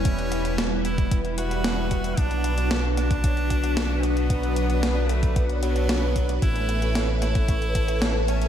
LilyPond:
<<
  \new Staff \with { instrumentName = "String machine" } { \time 4/4 \key b \minor \tempo 4 = 113 << { b'1~ | b'1~ | b'1 | <a a' e''>1 | } \\ { <g e'>1 | <d' fis'>1~ | <d' fis'>1 | cis''1 | } >> }
  \new Staff \with { instrumentName = "Tenor saxophone" } { \time 4/4 \key b \minor cis'4. e'8 r8 fis'4. | d'4. d'2 b8~ | b4. a8 r8 fis4. | e'4. e'2 cis'8 | }
  \new Staff \with { instrumentName = "Analog polysynth" } { \time 4/4 \key b \minor <g b e' b'>2~ <g b e' b'>8 <g b e' b'>4. | <fis b d'>2 <fis b d' cis''>8 r4. | <fis b d' b'>2~ <fis b d' b'>8 <fis b d' b'>4. | <a cis' e' b'>2 <a cis' e' cis''>8 r4. | }
  \new Staff \with { instrumentName = "Analog synth bass" } { \clef bass \time 4/4 \key b \minor e,,1 | b,,1~ | b,,1 | a,,1 | }
  \new DrumStaff \with { instrumentName = "Drums" } \drummode { \time 4/4 <hh bd>16 hh16 hh16 hh16 <hh sn>8 hh16 <hh bd>16 <hh bd>16 hh16 hh16 hh16 <hh sn>8 <hh bd>16 hh16 | <hh bd>16 hh16 hh16 hh16 <hh sn>8 <hh sn>16 <hh bd>16 <hh bd>16 hh16 <hh bd>16 hh16 <hh sn>8 hh16 hh16 | <hh bd>16 hh16 hh16 hh16 <hh sn>8 hh16 <hh bd>16 <hh bd>16 hh16 hh16 hh16 <hh sn>8 <hh bd>16 hh16 | <hh bd>16 hh16 hh16 hh16 <hh sn>8 <hh sn>16 <hh bd>16 <hh bd>16 hh16 <hh bd>16 hh16 <hh sn>8 hh16 hh16 | }
>>